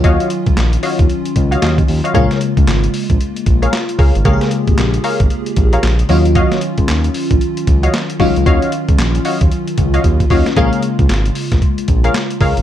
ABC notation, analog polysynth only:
X:1
M:4/4
L:1/16
Q:"Swing 16ths" 1/4=114
K:Bbm
V:1 name="Analog polysynth"
[Gdef]2 z4 [Gdef] z4 [Gdef] [Gdef] z2 [Gdef] | [ABdf]2 z8 z [ABdf] z2 [ABdf] z | [ABdf]2 z4 [ABdf] z4 [ABdf] z2 [Gdef] z | [Gdef]2 z8 z [Gdef] z2 [Gdef] z |
[Gdef]2 z4 [Gdef] z4 [Gdef] z2 [Gdef] z | [ABdf]2 z8 z [ABdf] z2 [ABdf] z |]